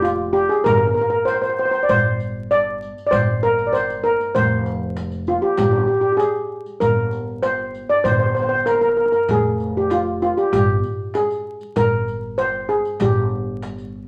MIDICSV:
0, 0, Header, 1, 5, 480
1, 0, Start_track
1, 0, Tempo, 617284
1, 514, Time_signature, 4, 2, 24, 8
1, 10948, End_track
2, 0, Start_track
2, 0, Title_t, "Steel pan"
2, 0, Program_c, 0, 114
2, 17, Note_on_c, 0, 65, 86
2, 257, Note_on_c, 0, 67, 88
2, 273, Note_off_c, 0, 65, 0
2, 382, Note_on_c, 0, 68, 81
2, 389, Note_off_c, 0, 67, 0
2, 498, Note_on_c, 0, 70, 95
2, 512, Note_off_c, 0, 68, 0
2, 551, Note_off_c, 0, 70, 0
2, 560, Note_on_c, 0, 70, 75
2, 596, Note_off_c, 0, 70, 0
2, 605, Note_on_c, 0, 70, 74
2, 669, Note_off_c, 0, 70, 0
2, 678, Note_on_c, 0, 70, 63
2, 723, Note_off_c, 0, 70, 0
2, 733, Note_on_c, 0, 70, 69
2, 779, Note_off_c, 0, 70, 0
2, 788, Note_on_c, 0, 70, 72
2, 846, Note_off_c, 0, 70, 0
2, 855, Note_on_c, 0, 70, 81
2, 918, Note_off_c, 0, 70, 0
2, 974, Note_on_c, 0, 72, 85
2, 1034, Note_off_c, 0, 72, 0
2, 1043, Note_on_c, 0, 72, 63
2, 1093, Note_off_c, 0, 72, 0
2, 1102, Note_on_c, 0, 72, 73
2, 1153, Note_off_c, 0, 72, 0
2, 1162, Note_on_c, 0, 72, 61
2, 1224, Note_off_c, 0, 72, 0
2, 1239, Note_on_c, 0, 72, 75
2, 1277, Note_off_c, 0, 72, 0
2, 1286, Note_on_c, 0, 72, 67
2, 1324, Note_off_c, 0, 72, 0
2, 1333, Note_on_c, 0, 72, 79
2, 1397, Note_off_c, 0, 72, 0
2, 1422, Note_on_c, 0, 74, 68
2, 1473, Note_off_c, 0, 74, 0
2, 1473, Note_on_c, 0, 72, 97
2, 1951, Note_on_c, 0, 74, 89
2, 1964, Note_off_c, 0, 72, 0
2, 2374, Note_off_c, 0, 74, 0
2, 2384, Note_on_c, 0, 74, 69
2, 2419, Note_on_c, 0, 72, 91
2, 2433, Note_off_c, 0, 74, 0
2, 2667, Note_on_c, 0, 70, 91
2, 2670, Note_off_c, 0, 72, 0
2, 2852, Note_on_c, 0, 74, 60
2, 2858, Note_off_c, 0, 70, 0
2, 2899, Note_on_c, 0, 72, 85
2, 2906, Note_off_c, 0, 74, 0
2, 3139, Note_on_c, 0, 70, 84
2, 3149, Note_off_c, 0, 72, 0
2, 3380, Note_on_c, 0, 72, 96
2, 3389, Note_off_c, 0, 70, 0
2, 4106, Note_on_c, 0, 65, 73
2, 4123, Note_off_c, 0, 72, 0
2, 4215, Note_on_c, 0, 67, 77
2, 4228, Note_off_c, 0, 65, 0
2, 4331, Note_off_c, 0, 67, 0
2, 4340, Note_on_c, 0, 67, 80
2, 4375, Note_off_c, 0, 67, 0
2, 4384, Note_on_c, 0, 67, 59
2, 4434, Note_off_c, 0, 67, 0
2, 4443, Note_on_c, 0, 67, 74
2, 4492, Note_off_c, 0, 67, 0
2, 4502, Note_on_c, 0, 67, 56
2, 4557, Note_off_c, 0, 67, 0
2, 4566, Note_on_c, 0, 67, 62
2, 4610, Note_off_c, 0, 67, 0
2, 4620, Note_on_c, 0, 67, 60
2, 4665, Note_off_c, 0, 67, 0
2, 4674, Note_on_c, 0, 67, 72
2, 4743, Note_off_c, 0, 67, 0
2, 4761, Note_on_c, 0, 67, 58
2, 4798, Note_on_c, 0, 68, 83
2, 4819, Note_off_c, 0, 67, 0
2, 5290, Note_on_c, 0, 70, 84
2, 5305, Note_off_c, 0, 68, 0
2, 5774, Note_on_c, 0, 72, 87
2, 5791, Note_off_c, 0, 70, 0
2, 6139, Note_on_c, 0, 74, 84
2, 6149, Note_off_c, 0, 72, 0
2, 6252, Note_on_c, 0, 72, 89
2, 6265, Note_off_c, 0, 74, 0
2, 6303, Note_off_c, 0, 72, 0
2, 6313, Note_on_c, 0, 72, 69
2, 6360, Note_off_c, 0, 72, 0
2, 6369, Note_on_c, 0, 72, 72
2, 6415, Note_off_c, 0, 72, 0
2, 6425, Note_on_c, 0, 72, 55
2, 6481, Note_off_c, 0, 72, 0
2, 6491, Note_on_c, 0, 72, 65
2, 6539, Note_off_c, 0, 72, 0
2, 6549, Note_on_c, 0, 72, 70
2, 6592, Note_off_c, 0, 72, 0
2, 6601, Note_on_c, 0, 72, 81
2, 6667, Note_off_c, 0, 72, 0
2, 6733, Note_on_c, 0, 70, 83
2, 6794, Note_off_c, 0, 70, 0
2, 6804, Note_on_c, 0, 70, 58
2, 6845, Note_off_c, 0, 70, 0
2, 6854, Note_on_c, 0, 70, 68
2, 6907, Note_off_c, 0, 70, 0
2, 6916, Note_on_c, 0, 70, 53
2, 6965, Note_off_c, 0, 70, 0
2, 6974, Note_on_c, 0, 70, 63
2, 7035, Note_off_c, 0, 70, 0
2, 7043, Note_on_c, 0, 70, 59
2, 7084, Note_off_c, 0, 70, 0
2, 7093, Note_on_c, 0, 70, 66
2, 7153, Note_off_c, 0, 70, 0
2, 7238, Note_on_c, 0, 68, 88
2, 7598, Note_on_c, 0, 67, 76
2, 7602, Note_off_c, 0, 68, 0
2, 7708, Note_on_c, 0, 65, 79
2, 7715, Note_off_c, 0, 67, 0
2, 7940, Note_off_c, 0, 65, 0
2, 7950, Note_on_c, 0, 65, 78
2, 8067, Note_on_c, 0, 67, 74
2, 8071, Note_off_c, 0, 65, 0
2, 8178, Note_off_c, 0, 67, 0
2, 8187, Note_on_c, 0, 67, 81
2, 8637, Note_off_c, 0, 67, 0
2, 8670, Note_on_c, 0, 68, 77
2, 9150, Note_on_c, 0, 70, 85
2, 9165, Note_off_c, 0, 68, 0
2, 9626, Note_on_c, 0, 72, 88
2, 9646, Note_off_c, 0, 70, 0
2, 9867, Note_on_c, 0, 68, 79
2, 9877, Note_off_c, 0, 72, 0
2, 10118, Note_off_c, 0, 68, 0
2, 10123, Note_on_c, 0, 67, 76
2, 10948, Note_off_c, 0, 67, 0
2, 10948, End_track
3, 0, Start_track
3, 0, Title_t, "Upright bass"
3, 0, Program_c, 1, 32
3, 0, Note_on_c, 1, 29, 97
3, 342, Note_off_c, 1, 29, 0
3, 512, Note_on_c, 1, 31, 99
3, 708, Note_off_c, 1, 31, 0
3, 1472, Note_on_c, 1, 31, 85
3, 2255, Note_off_c, 1, 31, 0
3, 2427, Note_on_c, 1, 31, 88
3, 3211, Note_off_c, 1, 31, 0
3, 3387, Note_on_c, 1, 29, 90
3, 4171, Note_off_c, 1, 29, 0
3, 4342, Note_on_c, 1, 31, 97
3, 4539, Note_off_c, 1, 31, 0
3, 5299, Note_on_c, 1, 31, 83
3, 6086, Note_off_c, 1, 31, 0
3, 6256, Note_on_c, 1, 31, 90
3, 7046, Note_off_c, 1, 31, 0
3, 7221, Note_on_c, 1, 29, 91
3, 8010, Note_off_c, 1, 29, 0
3, 8185, Note_on_c, 1, 31, 97
3, 8383, Note_off_c, 1, 31, 0
3, 9145, Note_on_c, 1, 31, 84
3, 9937, Note_off_c, 1, 31, 0
3, 10112, Note_on_c, 1, 31, 97
3, 10903, Note_off_c, 1, 31, 0
3, 10948, End_track
4, 0, Start_track
4, 0, Title_t, "Darbuka"
4, 37, Note_on_c, 9, 63, 79
4, 115, Note_off_c, 9, 63, 0
4, 517, Note_on_c, 9, 64, 87
4, 595, Note_off_c, 9, 64, 0
4, 998, Note_on_c, 9, 63, 70
4, 1075, Note_off_c, 9, 63, 0
4, 1476, Note_on_c, 9, 64, 85
4, 1554, Note_off_c, 9, 64, 0
4, 1955, Note_on_c, 9, 63, 74
4, 2033, Note_off_c, 9, 63, 0
4, 2430, Note_on_c, 9, 64, 91
4, 2507, Note_off_c, 9, 64, 0
4, 2671, Note_on_c, 9, 62, 27
4, 2749, Note_off_c, 9, 62, 0
4, 2790, Note_on_c, 9, 62, 28
4, 2868, Note_off_c, 9, 62, 0
4, 2909, Note_on_c, 9, 63, 64
4, 2986, Note_off_c, 9, 63, 0
4, 3385, Note_on_c, 9, 64, 84
4, 3462, Note_off_c, 9, 64, 0
4, 3862, Note_on_c, 9, 63, 66
4, 3940, Note_off_c, 9, 63, 0
4, 4228, Note_on_c, 9, 62, 25
4, 4305, Note_off_c, 9, 62, 0
4, 4343, Note_on_c, 9, 64, 91
4, 4421, Note_off_c, 9, 64, 0
4, 4819, Note_on_c, 9, 63, 64
4, 4897, Note_off_c, 9, 63, 0
4, 5295, Note_on_c, 9, 64, 83
4, 5373, Note_off_c, 9, 64, 0
4, 5781, Note_on_c, 9, 63, 81
4, 5858, Note_off_c, 9, 63, 0
4, 6258, Note_on_c, 9, 64, 84
4, 6336, Note_off_c, 9, 64, 0
4, 6740, Note_on_c, 9, 63, 74
4, 6817, Note_off_c, 9, 63, 0
4, 7220, Note_on_c, 9, 64, 84
4, 7298, Note_off_c, 9, 64, 0
4, 7700, Note_on_c, 9, 63, 77
4, 7778, Note_off_c, 9, 63, 0
4, 8181, Note_on_c, 9, 64, 82
4, 8258, Note_off_c, 9, 64, 0
4, 8662, Note_on_c, 9, 63, 68
4, 8740, Note_off_c, 9, 63, 0
4, 9144, Note_on_c, 9, 64, 82
4, 9222, Note_off_c, 9, 64, 0
4, 9631, Note_on_c, 9, 63, 76
4, 9708, Note_off_c, 9, 63, 0
4, 10116, Note_on_c, 9, 64, 84
4, 10194, Note_off_c, 9, 64, 0
4, 10477, Note_on_c, 9, 62, 26
4, 10555, Note_off_c, 9, 62, 0
4, 10600, Note_on_c, 9, 63, 69
4, 10678, Note_off_c, 9, 63, 0
4, 10723, Note_on_c, 9, 62, 25
4, 10801, Note_off_c, 9, 62, 0
4, 10850, Note_on_c, 9, 62, 23
4, 10928, Note_off_c, 9, 62, 0
4, 10948, End_track
5, 0, Start_track
5, 0, Title_t, "Riq"
5, 36, Note_on_c, 9, 54, 46
5, 114, Note_off_c, 9, 54, 0
5, 277, Note_on_c, 9, 54, 17
5, 355, Note_off_c, 9, 54, 0
5, 399, Note_on_c, 9, 54, 18
5, 477, Note_off_c, 9, 54, 0
5, 512, Note_on_c, 9, 54, 69
5, 590, Note_off_c, 9, 54, 0
5, 757, Note_on_c, 9, 54, 17
5, 834, Note_off_c, 9, 54, 0
5, 994, Note_on_c, 9, 54, 44
5, 1071, Note_off_c, 9, 54, 0
5, 1115, Note_on_c, 9, 54, 20
5, 1192, Note_off_c, 9, 54, 0
5, 1349, Note_on_c, 9, 54, 17
5, 1427, Note_off_c, 9, 54, 0
5, 1470, Note_on_c, 9, 54, 65
5, 1547, Note_off_c, 9, 54, 0
5, 1710, Note_on_c, 9, 54, 18
5, 1788, Note_off_c, 9, 54, 0
5, 1955, Note_on_c, 9, 54, 40
5, 2033, Note_off_c, 9, 54, 0
5, 2195, Note_on_c, 9, 54, 17
5, 2273, Note_off_c, 9, 54, 0
5, 2318, Note_on_c, 9, 54, 19
5, 2395, Note_off_c, 9, 54, 0
5, 2430, Note_on_c, 9, 54, 67
5, 2508, Note_off_c, 9, 54, 0
5, 2673, Note_on_c, 9, 54, 18
5, 2751, Note_off_c, 9, 54, 0
5, 2786, Note_on_c, 9, 54, 18
5, 2864, Note_off_c, 9, 54, 0
5, 2913, Note_on_c, 9, 54, 43
5, 2991, Note_off_c, 9, 54, 0
5, 3030, Note_on_c, 9, 54, 18
5, 3108, Note_off_c, 9, 54, 0
5, 3149, Note_on_c, 9, 54, 17
5, 3226, Note_off_c, 9, 54, 0
5, 3271, Note_on_c, 9, 54, 16
5, 3348, Note_off_c, 9, 54, 0
5, 3387, Note_on_c, 9, 54, 65
5, 3465, Note_off_c, 9, 54, 0
5, 3623, Note_on_c, 9, 54, 17
5, 3701, Note_off_c, 9, 54, 0
5, 3861, Note_on_c, 9, 54, 44
5, 3939, Note_off_c, 9, 54, 0
5, 3979, Note_on_c, 9, 54, 17
5, 4057, Note_off_c, 9, 54, 0
5, 4098, Note_on_c, 9, 54, 16
5, 4176, Note_off_c, 9, 54, 0
5, 4334, Note_on_c, 9, 54, 67
5, 4412, Note_off_c, 9, 54, 0
5, 4817, Note_on_c, 9, 54, 49
5, 4895, Note_off_c, 9, 54, 0
5, 5179, Note_on_c, 9, 54, 17
5, 5257, Note_off_c, 9, 54, 0
5, 5297, Note_on_c, 9, 54, 60
5, 5375, Note_off_c, 9, 54, 0
5, 5539, Note_on_c, 9, 54, 15
5, 5617, Note_off_c, 9, 54, 0
5, 5777, Note_on_c, 9, 54, 54
5, 5855, Note_off_c, 9, 54, 0
5, 6022, Note_on_c, 9, 54, 18
5, 6100, Note_off_c, 9, 54, 0
5, 6143, Note_on_c, 9, 54, 17
5, 6221, Note_off_c, 9, 54, 0
5, 6262, Note_on_c, 9, 54, 58
5, 6340, Note_off_c, 9, 54, 0
5, 6504, Note_on_c, 9, 54, 17
5, 6582, Note_off_c, 9, 54, 0
5, 6741, Note_on_c, 9, 54, 50
5, 6818, Note_off_c, 9, 54, 0
5, 6855, Note_on_c, 9, 54, 19
5, 6933, Note_off_c, 9, 54, 0
5, 7098, Note_on_c, 9, 54, 17
5, 7176, Note_off_c, 9, 54, 0
5, 7220, Note_on_c, 9, 54, 58
5, 7298, Note_off_c, 9, 54, 0
5, 7464, Note_on_c, 9, 54, 16
5, 7541, Note_off_c, 9, 54, 0
5, 7704, Note_on_c, 9, 54, 51
5, 7781, Note_off_c, 9, 54, 0
5, 7946, Note_on_c, 9, 54, 15
5, 8024, Note_off_c, 9, 54, 0
5, 8070, Note_on_c, 9, 54, 17
5, 8148, Note_off_c, 9, 54, 0
5, 8190, Note_on_c, 9, 54, 70
5, 8267, Note_off_c, 9, 54, 0
5, 8428, Note_on_c, 9, 54, 18
5, 8506, Note_off_c, 9, 54, 0
5, 8669, Note_on_c, 9, 54, 50
5, 8747, Note_off_c, 9, 54, 0
5, 8791, Note_on_c, 9, 54, 19
5, 8869, Note_off_c, 9, 54, 0
5, 9026, Note_on_c, 9, 54, 18
5, 9104, Note_off_c, 9, 54, 0
5, 9144, Note_on_c, 9, 54, 65
5, 9221, Note_off_c, 9, 54, 0
5, 9393, Note_on_c, 9, 54, 17
5, 9470, Note_off_c, 9, 54, 0
5, 9630, Note_on_c, 9, 54, 50
5, 9708, Note_off_c, 9, 54, 0
5, 9869, Note_on_c, 9, 54, 17
5, 9947, Note_off_c, 9, 54, 0
5, 9993, Note_on_c, 9, 54, 17
5, 10071, Note_off_c, 9, 54, 0
5, 10107, Note_on_c, 9, 54, 66
5, 10184, Note_off_c, 9, 54, 0
5, 10594, Note_on_c, 9, 54, 48
5, 10672, Note_off_c, 9, 54, 0
5, 10717, Note_on_c, 9, 54, 18
5, 10795, Note_off_c, 9, 54, 0
5, 10948, End_track
0, 0, End_of_file